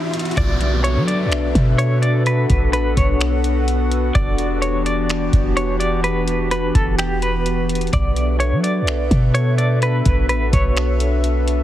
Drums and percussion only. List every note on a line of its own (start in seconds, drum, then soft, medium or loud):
0.14 closed hi-hat medium
0.19 closed hi-hat medium
0.25 closed hi-hat medium
0.31 closed hi-hat soft
0.37 kick loud
0.37 closed hi-hat medium
0.61 closed hi-hat medium
0.84 closed hi-hat medium
1.08 closed hi-hat medium
1.32 finger snap loud
1.32 closed hi-hat medium
1.55 kick loud
1.55 closed hi-hat medium
1.79 closed hi-hat medium
2.03 closed hi-hat medium
2.26 closed hi-hat medium
2.50 kick loud
2.50 closed hi-hat medium
2.73 closed hi-hat medium
2.97 kick medium
2.97 closed hi-hat medium
3.21 finger snap loud
3.21 closed hi-hat medium
3.44 closed hi-hat medium
3.68 closed hi-hat medium
3.92 closed hi-hat medium
4.15 kick loud
4.15 closed hi-hat medium
4.38 closed hi-hat medium
4.62 closed hi-hat medium
4.86 closed hi-hat medium
5.09 finger snap loud
5.09 closed hi-hat medium
5.33 kick medium
5.33 closed hi-hat medium
5.57 closed hi-hat medium
5.80 closed hi-hat medium
6.04 closed hi-hat medium
6.28 closed hi-hat medium
6.51 closed hi-hat medium
6.75 kick medium
6.75 closed hi-hat medium
6.99 finger snap loud
6.99 closed hi-hat medium
7.22 closed hi-hat medium
7.46 closed hi-hat medium
7.69 closed hi-hat medium
7.75 closed hi-hat medium
7.81 closed hi-hat medium
7.87 closed hi-hat soft
7.93 kick loud
7.93 closed hi-hat medium
8.16 closed hi-hat medium
8.40 closed hi-hat medium
8.64 closed hi-hat medium
8.87 finger snap loud
8.87 closed hi-hat medium
9.11 kick loud
9.11 closed hi-hat medium
9.35 closed hi-hat medium
9.58 closed hi-hat medium
9.82 closed hi-hat medium
10.05 kick medium
10.05 closed hi-hat medium
10.29 closed hi-hat medium
10.53 kick medium
10.53 closed hi-hat medium
10.77 finger snap loud
10.77 closed hi-hat medium
11.00 closed hi-hat medium
11.24 closed hi-hat medium
11.48 closed hi-hat medium